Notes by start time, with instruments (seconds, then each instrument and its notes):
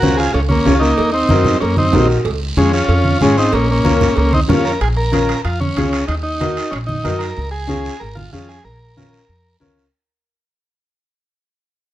Already playing: transistor combo organ F#4 A#4
0.02 upright bass C#2, upright piano C#4 F4 C5, high conga, short guiro
0.17 transistor combo organ F4 G#4, short guiro
0.33 upright bass C#2, transistor combo organ C#4 F4, cowbell, long guiro
0.49 transistor combo organ A#3 C#4, high conga
0.66 upright bass C#2, upright piano C#4 F4 C#5, high conga, low timbale, short guiro
0.75 transistor combo organ F4
0.80 transistor combo organ A#3 D#4, short guiro
0.98 upright bass D#2, cowbell, long guiro
1.12 transistor combo organ C4 D#4
1.29 upright bass F#2, upright piano D#4 F#4 A#4, high conga, short guiro
1.44 low conga, short guiro
1.60 upright bass F#2, transistor combo organ A#3 C#4, cowbell, long guiro
1.77 transistor combo organ C4 D#4, high conga
1.93 upright bass A#1, upright piano D#4 F#4 A#4, high conga, low conga, low timbale, short guiro
2.10 short guiro
2.25 upright bass C#2, cowbell, long guiro
2.57 upright bass F2, transistor combo organ G#3 C#4, upright piano C#4 F4 G#4, high conga, short guiro
2.73 transistor combo organ C#4 F4, short guiro
2.89 upright bass F2, cowbell, long guiro
3.05 high conga
3.21 upright bass G#1, transistor combo organ G#3 C#4, upright piano C#4 F4 G#4, high conga, short guiro
3.37 transistor combo organ C4 D#4, short guiro
3.52 upright bass A#1, transistor combo organ A#3 C#4, cowbell, long guiro
3.71 transistor combo organ A#3 C#4
3.84 upright bass C#2, upright piano C#4 F4 A#4, high conga, short guiro
4.01 low conga, short guiro
4.16 upright bass C#2, transistor combo organ A#3 C#4, cowbell, long guiro
4.33 transistor combo organ C4 D#4, high conga
4.48 upright bass F2, upright piano C#4 F4 A#4, transistor combo organ C#4 F4, high conga, low conga, low timbale, short guiro
4.65 transistor combo organ A#4, short guiro
4.81 upright bass A#1, transistor combo organ G#4, high timbale, long guiro
4.97 transistor combo organ A#4
5.12 upright piano C#4 F4 A#4, high conga, high timbale, short guiro
5.29 high timbale, short guiro
5.45 upright bass F2, transistor combo organ F4, high timbale, long guiro
5.61 transistor combo organ C#4, high conga
5.76 upright bass C#2, upright piano C#4 F4 G#4, high conga, high timbale, short guiro
5.93 high timbale, short guiro
6.08 upright bass D#2, transistor combo organ D#4, high timbale, long guiro
6.23 transistor combo organ D#4
6.40 upright piano D#4 F#4 A#4, high conga, high timbale, short guiro
6.57 high timbale, short guiro
6.71 upright bass A#1, transistor combo organ C#4, high timbale, long guiro
6.87 transistor combo organ D#4, high conga
7.04 upright bass F#2, upright piano D#4 F#4 A#4, high conga, high timbale, short guiro
7.19 transistor combo organ A#4, high timbale, short guiro
7.37 upright bass C#2, long guiro
7.51 transistor combo organ G#4
7.67 upright piano C#4 F4 G#4, high conga, short guiro
7.85 short guiro
8.00 upright bass G#1, transistor combo organ A#4, long guiro
8.15 transistor combo organ F4, high conga
8.33 upright bass F2, upright piano C#4 F4 G#4, transistor combo organ F4, high conga, short guiro
8.49 transistor combo organ G#4, short guiro
8.65 upright bass A#1, transistor combo organ A#4, long guiro
8.97 upright piano C#4 F4 A#4, high conga, short guiro
9.13 short guiro
9.29 upright bass F2, long guiro
9.60 upright bass C#2, upright piano C#4 F4 A#4, high conga, short guiro
9.78 short guiro